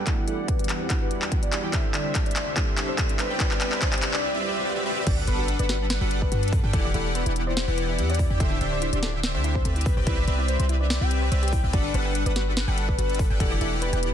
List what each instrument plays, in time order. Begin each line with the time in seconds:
Already playing: riser
0.05 analog synth pad E2 E3 G3 D4, analog polysynth E3 E4 G4 D5 F#5, grand piano G3 B3 D4 E4 F#4, soft synth lead A4, kick, clap, closed hi-hat
0.27 analog polysynth E3 E4 G4 D5 F#5, soft synth lead A4, closed hi-hat
0.48 soft synth lead B4, kick, closed hi-hat
0.59 analog polysynth E3 E4 G4 D5 F#5, closed hi-hat
0.64 closed hi-hat
0.69 clap, closed hi-hat
0.80 soft synth lead C5
0.89 grand piano G3 B3 D4 E4 F#4, kick, clap, closed hi-hat
1.01 analog polysynth E3 E4 G4 D5 F#5, soft synth lead B4
1.11 closed hi-hat
1.22 clap
1.31 analog polysynth E3 E4 G4 D5 F#5, grand piano G3 B3 D4 E4 F#4, kick, closed hi-hat
1.43 soft synth lead D5, closed hi-hat
1.51 grand piano G3 B3 D4 E4 G4, clap, closed hi-hat
1.64 analog polysynth E3 E4 G4 D5 G5
1.71 analog synth pad D2 C3 E4, analog polysynth D3 D4 G4 C5 E5, grand piano G3 C4 D4 E4, soft synth lead E5, kick, clap, closed hi-hat
1.94 analog polysynth D3 D4 G4 C5 E5, soft synth lead D5, clap, closed hi-hat
2.15 kick, clap, closed hi-hat
2.26 analog polysynth D3 D4 G4 C5 E5, soft synth lead D5, closed hi-hat
2.31 closed hi-hat
2.36 clap, closed hi-hat
2.56 grand piano G3 C4 D4 E4 A4, kick, clap, closed hi-hat
2.68 analog polysynth D3 D4 G4 C5 E5
2.78 clap, closed hi-hat
2.89 soft synth lead C5
2.97 grand piano G3 C4 D4 E4 A4, analog polysynth C4 G4 B4 D5 E5, kick, clap, closed hi-hat
3.09 closed hi-hat
3.18 analog synth pad C2 B4, grand piano G3 C4 D4 E4 C5, soft synth lead B4, clap, closed hi-hat
3.30 analog polysynth C4 G4 B4 D5 G5
3.38 grand piano G3 C4 D4 E4, analog polysynth C4 G4 B4 D5 E5, soft synth lead B4, kick, clap, closed hi-hat
3.42 grand piano B4
3.51 clap
3.61 analog polysynth C4 G4 B4 D5 E5, soft synth lead B4, clap, closed hi-hat
3.72 clap
3.82 soft synth lead C5, kick, clap, closed hi-hat
3.93 analog polysynth C4 G4 B4 D5 E5, clap, closed hi-hat
3.98 closed hi-hat
4.02 clap, closed hi-hat
4.13 soft synth lead D5, clap
4.23 swell
4.34 analog polysynth C4 G4 B4 D5 E5
4.65 analog polysynth C4 G4 B4 D5 G5
4.76 analog polysynth C4 G4 B4 D5 E5
4.86 analog polysynth C4 G4 B4 D5 E5
5.07 808-style bass G1, analog synth pad G3 D4 F#4 B4, analog polysynth G3 D4 A4 B4 F#5, synth arpeggio sound F#4, soft synth lead D5, kick, closed hi-hat, crash, sub drop
5.27 808-style bass G1, analog polysynth G3 D4 A4 B4 F#5, soft synth lead B4, synth arpeggio sound B4, closed hi-hat
5.39 synth arpeggio sound F#4
5.48 closed hi-hat
5.59 808-style bass G1, analog polysynth G3 D4 A4 B4 F#5, soft synth lead B4, synth arpeggio sound D5, closed hi-hat
5.69 synth arpeggio sound F#4, snare, closed hi-hat
5.90 synth arpeggio sound B4, snare, closed hi-hat
6.01 808-style bass G1, analog polysynth G3 D4 A4 B4 F#5, synth arpeggio sound F#4
6.11 closed hi-hat
6.22 soft synth lead B4, synth arpeggio sound D5, kick
6.32 808-style bass G2, analog polysynth G3 D4 A4 B4 F#5, synth arpeggio sound F#4, closed hi-hat
6.43 closed hi-hat
6.48 closed hi-hat
6.53 soft synth lead A4, synth arpeggio sound B4, kick, open hi-hat
6.64 808-style bass G2, analog polysynth G3 D4 A4 B4 G5, synth arpeggio sound F#4
6.73 808-style bass E1, analog polysynth E3 E4 G4 D5 F#5, analog synth pad E3 B3 G4, soft synth lead A4, kick, closed hi-hat
6.85 synth arpeggio sound D5
6.94 808-style bass E1, analog polysynth E3 E4 G4 D5 F#5, synth arpeggio sound E4, soft synth lead A4, closed hi-hat
7.15 soft synth lead B4, synth arpeggio sound B4, closed hi-hat
7.26 808-style bass E1, analog polysynth E3 E4 G4 D5 F#5, synth arpeggio sound E4, closed hi-hat
7.36 closed hi-hat
7.47 soft synth lead C5, synth arpeggio sound D5
7.57 synth arpeggio sound E4, snare, closed hi-hat
7.68 808-style bass E1, analog polysynth E3 E4 G4 D5 F#5, soft synth lead B4
7.78 synth arpeggio sound B4, closed hi-hat
7.89 synth arpeggio sound E4
7.98 808-style bass E2, analog polysynth E3 E4 G4 D5 F#5, closed hi-hat
8.10 soft synth lead D5, synth arpeggio sound D5, closed hi-hat
8.14 closed hi-hat
8.19 synth arpeggio sound E4, kick, open hi-hat
8.30 808-style bass E2, analog polysynth E3 E4 G4 D5 G5
8.40 808-style bass D1, analog polysynth D3 D4 G4 C5 E5, analog synth pad D3 C4 E4, synth arpeggio sound A4, soft synth lead E5, kick, closed hi-hat
8.51 synth arpeggio sound E4
8.61 808-style bass D1, analog polysynth D3 D4 G4 C5 E5, soft synth lead D5, closed hi-hat
8.72 synth arpeggio sound C5
8.82 synth arpeggio sound E4, closed hi-hat
8.93 808-style bass D1, analog polysynth D3 D4 G4 C5 E5, soft synth lead D5, closed hi-hat
9.03 synth arpeggio sound A4, snare, closed hi-hat
9.14 synth arpeggio sound E4
9.23 snare, closed hi-hat
9.34 808-style bass D2, analog polysynth D3 D4 G4 C5 E5, synth arpeggio sound C5
9.44 synth arpeggio sound E4, closed hi-hat
9.55 soft synth lead C5, kick
9.65 808-style bass D2, analog polysynth C4 G4 B4 D5 E5, synth arpeggio sound A4, closed hi-hat
9.76 synth arpeggio sound E4, closed hi-hat
9.81 closed hi-hat
9.86 analog synth pad C3 G3 B4, soft synth lead B4, kick, open hi-hat
9.97 808-style bass C2, analog polysynth C4 G4 B4 D5 G5, synth arpeggio sound C5
10.07 808-style bass C2, analog polysynth C4 G4 B4 D5 E5, synth arpeggio sound E4, soft synth lead B4, kick, closed hi-hat
10.28 808-style bass C2, analog polysynth C4 G4 B4 D5 E5, synth arpeggio sound B4, soft synth lead B4, closed hi-hat
10.39 synth arpeggio sound E4
10.48 soft synth lead C5, closed hi-hat
10.59 808-style bass C2, analog polysynth C4 G4 B4 D5 E5, synth arpeggio sound C5, closed hi-hat
10.69 synth arpeggio sound E4, closed hi-hat
10.80 soft synth lead D5
10.90 synth arpeggio sound B4, snare, closed hi-hat
11.01 808-style bass C2, analog polysynth C4 G4 B4 D5 E5, synth arpeggio sound E4, soft synth lead G5
11.11 closed hi-hat
11.22 synth arpeggio sound C5
11.32 808-style bass C2, analog polysynth C4 G4 B4 D5 E5, synth arpeggio sound C5, closed hi-hat
11.43 synth arpeggio sound G4, soft synth lead G5, closed hi-hat
11.48 closed hi-hat
11.53 synth arpeggio sound E4, kick, open hi-hat
11.64 808-style bass C2, analog polysynth C4 G4 B4 D5 G5, synth arpeggio sound E5
11.73 808-style bass G1, analog polysynth G3 D4 A4 B4 F#5, analog synth pad D4 F#4 B4, synth arpeggio sound F#4, soft synth lead D5, kick, closed hi-hat
11.94 808-style bass G1, analog polysynth G3 D4 A4 B4 F#5, soft synth lead B4, synth arpeggio sound B4, closed hi-hat
12.05 synth arpeggio sound G5
12.15 closed hi-hat
12.26 808-style bass G1, analog polysynth G3 D4 A4 B4 F#5, soft synth lead B4, synth arpeggio sound D5, closed hi-hat
12.36 synth arpeggio sound F#4, snare, closed hi-hat
12.57 synth arpeggio sound B4, snare, closed hi-hat
12.68 808-style bass G1, analog polysynth G3 D4 A4 B4 F#5, synth arpeggio sound G5
12.78 closed hi-hat
12.88 soft synth lead B4, synth arpeggio sound D5, kick
12.98 808-style bass G1, analog polysynth G3 D4 A4 B4 F#5, synth arpeggio sound F#4, closed hi-hat
13.10 closed hi-hat
13.15 closed hi-hat
13.19 soft synth lead A4, synth arpeggio sound B4, kick, open hi-hat
13.30 808-style bass G1, analog polysynth G3 D4 A4 B4 G5, synth arpeggio sound G5
13.40 808-style bass E1, analog polysynth E3 E4 G4 D5 F#5, analog synth pad E3 B3 G4, soft synth lead A4, kick, closed hi-hat
13.51 synth arpeggio sound D5
13.61 808-style bass E1, analog polysynth E3 E4 G4 D5 F#5, synth arpeggio sound E4, soft synth lead A4, closed hi-hat
13.82 synth arpeggio sound B4, soft synth lead B4, closed hi-hat
13.93 808-style bass E1, analog polysynth E3 E4 G4 D5 F#5, synth arpeggio sound G5, closed hi-hat
14.03 closed hi-hat